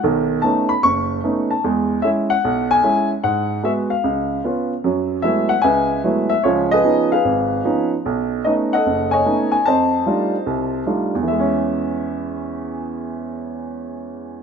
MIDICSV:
0, 0, Header, 1, 2, 480
1, 0, Start_track
1, 0, Key_signature, 4, "major"
1, 0, Tempo, 401606
1, 37, Time_signature, 4, 2, 24, 8
1, 17244, End_track
2, 0, Start_track
2, 0, Title_t, "Grand piano"
2, 0, Program_c, 0, 0
2, 41, Note_on_c, 0, 51, 62
2, 45, Note_on_c, 0, 35, 65
2, 454, Note_off_c, 0, 51, 0
2, 456, Note_off_c, 0, 35, 0
2, 500, Note_on_c, 0, 81, 75
2, 520, Note_on_c, 0, 57, 47
2, 521, Note_on_c, 0, 59, 46
2, 524, Note_on_c, 0, 61, 46
2, 524, Note_on_c, 0, 63, 50
2, 823, Note_on_c, 0, 83, 77
2, 837, Note_off_c, 0, 81, 0
2, 853, Note_off_c, 0, 57, 0
2, 854, Note_off_c, 0, 59, 0
2, 855, Note_off_c, 0, 61, 0
2, 855, Note_off_c, 0, 63, 0
2, 976, Note_off_c, 0, 83, 0
2, 995, Note_on_c, 0, 85, 96
2, 1006, Note_on_c, 0, 30, 62
2, 1415, Note_off_c, 0, 30, 0
2, 1438, Note_off_c, 0, 85, 0
2, 1481, Note_on_c, 0, 57, 47
2, 1483, Note_on_c, 0, 59, 44
2, 1486, Note_on_c, 0, 61, 45
2, 1491, Note_on_c, 0, 63, 51
2, 1799, Note_on_c, 0, 81, 63
2, 1812, Note_off_c, 0, 57, 0
2, 1812, Note_off_c, 0, 59, 0
2, 1814, Note_off_c, 0, 61, 0
2, 1817, Note_off_c, 0, 63, 0
2, 1942, Note_off_c, 0, 81, 0
2, 1962, Note_on_c, 0, 56, 64
2, 1963, Note_on_c, 0, 40, 63
2, 2371, Note_off_c, 0, 56, 0
2, 2372, Note_off_c, 0, 40, 0
2, 2416, Note_on_c, 0, 76, 78
2, 2438, Note_on_c, 0, 56, 49
2, 2441, Note_on_c, 0, 61, 46
2, 2446, Note_on_c, 0, 64, 55
2, 2489, Note_off_c, 0, 76, 0
2, 2747, Note_on_c, 0, 78, 89
2, 2769, Note_off_c, 0, 56, 0
2, 2770, Note_off_c, 0, 61, 0
2, 2772, Note_off_c, 0, 64, 0
2, 2922, Note_on_c, 0, 35, 66
2, 3192, Note_off_c, 0, 78, 0
2, 3236, Note_on_c, 0, 80, 102
2, 3330, Note_off_c, 0, 35, 0
2, 3383, Note_on_c, 0, 56, 51
2, 3388, Note_on_c, 0, 61, 44
2, 3396, Note_on_c, 0, 64, 57
2, 3676, Note_off_c, 0, 80, 0
2, 3720, Note_off_c, 0, 56, 0
2, 3722, Note_off_c, 0, 61, 0
2, 3726, Note_off_c, 0, 64, 0
2, 3867, Note_on_c, 0, 78, 78
2, 3869, Note_on_c, 0, 44, 64
2, 4282, Note_off_c, 0, 44, 0
2, 4310, Note_off_c, 0, 78, 0
2, 4342, Note_on_c, 0, 56, 51
2, 4345, Note_on_c, 0, 59, 43
2, 4350, Note_on_c, 0, 66, 51
2, 4360, Note_on_c, 0, 76, 73
2, 4430, Note_off_c, 0, 76, 0
2, 4664, Note_on_c, 0, 77, 71
2, 4678, Note_off_c, 0, 56, 0
2, 4680, Note_off_c, 0, 59, 0
2, 4682, Note_off_c, 0, 66, 0
2, 4827, Note_on_c, 0, 37, 60
2, 5240, Note_off_c, 0, 37, 0
2, 5256, Note_off_c, 0, 77, 0
2, 5308, Note_on_c, 0, 59, 50
2, 5316, Note_on_c, 0, 61, 41
2, 5319, Note_on_c, 0, 65, 50
2, 5640, Note_off_c, 0, 59, 0
2, 5644, Note_off_c, 0, 61, 0
2, 5646, Note_off_c, 0, 65, 0
2, 5786, Note_on_c, 0, 54, 59
2, 5788, Note_on_c, 0, 42, 59
2, 6199, Note_off_c, 0, 54, 0
2, 6200, Note_off_c, 0, 42, 0
2, 6243, Note_on_c, 0, 76, 84
2, 6256, Note_on_c, 0, 54, 47
2, 6261, Note_on_c, 0, 56, 47
2, 6263, Note_on_c, 0, 57, 43
2, 6266, Note_on_c, 0, 59, 42
2, 6266, Note_on_c, 0, 64, 54
2, 6562, Note_on_c, 0, 78, 85
2, 6582, Note_off_c, 0, 76, 0
2, 6595, Note_off_c, 0, 54, 0
2, 6597, Note_off_c, 0, 56, 0
2, 6598, Note_off_c, 0, 57, 0
2, 6599, Note_off_c, 0, 59, 0
2, 6599, Note_off_c, 0, 64, 0
2, 6713, Note_on_c, 0, 80, 90
2, 6734, Note_off_c, 0, 78, 0
2, 6737, Note_on_c, 0, 76, 61
2, 6738, Note_on_c, 0, 71, 62
2, 6742, Note_on_c, 0, 37, 63
2, 7157, Note_off_c, 0, 37, 0
2, 7171, Note_off_c, 0, 80, 0
2, 7218, Note_on_c, 0, 54, 49
2, 7222, Note_on_c, 0, 57, 44
2, 7225, Note_on_c, 0, 56, 44
2, 7227, Note_on_c, 0, 59, 44
2, 7230, Note_on_c, 0, 64, 50
2, 7506, Note_off_c, 0, 76, 0
2, 7524, Note_on_c, 0, 76, 80
2, 7555, Note_off_c, 0, 54, 0
2, 7558, Note_off_c, 0, 57, 0
2, 7559, Note_off_c, 0, 56, 0
2, 7560, Note_off_c, 0, 59, 0
2, 7562, Note_off_c, 0, 64, 0
2, 7651, Note_off_c, 0, 71, 0
2, 7679, Note_off_c, 0, 76, 0
2, 7690, Note_on_c, 0, 73, 72
2, 7707, Note_on_c, 0, 37, 61
2, 7707, Note_on_c, 0, 53, 66
2, 7708, Note_on_c, 0, 68, 53
2, 7710, Note_on_c, 0, 65, 54
2, 7993, Note_off_c, 0, 73, 0
2, 8025, Note_on_c, 0, 75, 92
2, 8028, Note_off_c, 0, 68, 0
2, 8046, Note_on_c, 0, 68, 59
2, 8048, Note_on_c, 0, 71, 56
2, 8120, Note_off_c, 0, 37, 0
2, 8120, Note_off_c, 0, 53, 0
2, 8177, Note_on_c, 0, 53, 52
2, 8184, Note_on_c, 0, 59, 47
2, 8185, Note_on_c, 0, 61, 44
2, 8188, Note_on_c, 0, 63, 52
2, 8470, Note_off_c, 0, 75, 0
2, 8506, Note_off_c, 0, 68, 0
2, 8506, Note_off_c, 0, 71, 0
2, 8509, Note_on_c, 0, 77, 85
2, 8516, Note_off_c, 0, 53, 0
2, 8519, Note_off_c, 0, 59, 0
2, 8520, Note_off_c, 0, 61, 0
2, 8521, Note_off_c, 0, 63, 0
2, 8524, Note_on_c, 0, 68, 55
2, 8524, Note_on_c, 0, 71, 57
2, 8617, Note_off_c, 0, 65, 0
2, 8660, Note_on_c, 0, 32, 62
2, 9077, Note_off_c, 0, 32, 0
2, 9137, Note_on_c, 0, 53, 46
2, 9142, Note_on_c, 0, 59, 42
2, 9142, Note_on_c, 0, 61, 46
2, 9149, Note_on_c, 0, 63, 55
2, 9418, Note_off_c, 0, 77, 0
2, 9425, Note_off_c, 0, 68, 0
2, 9425, Note_off_c, 0, 71, 0
2, 9476, Note_off_c, 0, 53, 0
2, 9479, Note_off_c, 0, 59, 0
2, 9479, Note_off_c, 0, 61, 0
2, 9482, Note_off_c, 0, 63, 0
2, 9629, Note_on_c, 0, 35, 64
2, 10043, Note_off_c, 0, 35, 0
2, 10094, Note_on_c, 0, 75, 66
2, 10103, Note_on_c, 0, 57, 46
2, 10107, Note_on_c, 0, 59, 45
2, 10112, Note_on_c, 0, 61, 47
2, 10113, Note_on_c, 0, 63, 53
2, 10167, Note_off_c, 0, 75, 0
2, 10434, Note_on_c, 0, 78, 81
2, 10440, Note_off_c, 0, 57, 0
2, 10442, Note_off_c, 0, 59, 0
2, 10444, Note_off_c, 0, 61, 0
2, 10445, Note_off_c, 0, 63, 0
2, 10450, Note_on_c, 0, 75, 60
2, 10454, Note_on_c, 0, 69, 58
2, 10590, Note_on_c, 0, 30, 61
2, 10892, Note_on_c, 0, 80, 82
2, 10896, Note_off_c, 0, 75, 0
2, 10914, Note_on_c, 0, 75, 59
2, 10915, Note_on_c, 0, 73, 61
2, 10923, Note_off_c, 0, 78, 0
2, 11004, Note_off_c, 0, 30, 0
2, 11063, Note_on_c, 0, 57, 45
2, 11069, Note_on_c, 0, 59, 42
2, 11069, Note_on_c, 0, 61, 43
2, 11073, Note_on_c, 0, 63, 53
2, 11344, Note_off_c, 0, 80, 0
2, 11352, Note_off_c, 0, 69, 0
2, 11374, Note_on_c, 0, 80, 78
2, 11401, Note_off_c, 0, 57, 0
2, 11403, Note_off_c, 0, 59, 0
2, 11403, Note_off_c, 0, 61, 0
2, 11405, Note_off_c, 0, 63, 0
2, 11504, Note_off_c, 0, 75, 0
2, 11505, Note_off_c, 0, 73, 0
2, 11527, Note_off_c, 0, 80, 0
2, 11540, Note_on_c, 0, 81, 83
2, 11554, Note_on_c, 0, 41, 65
2, 11563, Note_on_c, 0, 75, 57
2, 11566, Note_on_c, 0, 72, 57
2, 11967, Note_off_c, 0, 41, 0
2, 12025, Note_on_c, 0, 55, 47
2, 12029, Note_on_c, 0, 57, 42
2, 12031, Note_on_c, 0, 62, 43
2, 12034, Note_on_c, 0, 65, 51
2, 12035, Note_on_c, 0, 63, 39
2, 12362, Note_off_c, 0, 55, 0
2, 12364, Note_off_c, 0, 57, 0
2, 12365, Note_off_c, 0, 62, 0
2, 12367, Note_off_c, 0, 63, 0
2, 12367, Note_off_c, 0, 65, 0
2, 12506, Note_on_c, 0, 36, 57
2, 12923, Note_off_c, 0, 36, 0
2, 12936, Note_off_c, 0, 81, 0
2, 12948, Note_off_c, 0, 75, 0
2, 12949, Note_off_c, 0, 72, 0
2, 12984, Note_on_c, 0, 55, 44
2, 12986, Note_on_c, 0, 62, 42
2, 12988, Note_on_c, 0, 57, 41
2, 12990, Note_on_c, 0, 63, 40
2, 12995, Note_on_c, 0, 65, 47
2, 13322, Note_off_c, 0, 55, 0
2, 13323, Note_off_c, 0, 62, 0
2, 13324, Note_off_c, 0, 57, 0
2, 13324, Note_on_c, 0, 40, 57
2, 13325, Note_off_c, 0, 63, 0
2, 13328, Note_off_c, 0, 65, 0
2, 13419, Note_on_c, 0, 52, 50
2, 13480, Note_on_c, 0, 76, 63
2, 13522, Note_on_c, 0, 56, 53
2, 13621, Note_on_c, 0, 61, 66
2, 17244, Note_off_c, 0, 40, 0
2, 17244, Note_off_c, 0, 52, 0
2, 17244, Note_off_c, 0, 56, 0
2, 17244, Note_off_c, 0, 61, 0
2, 17244, Note_off_c, 0, 76, 0
2, 17244, End_track
0, 0, End_of_file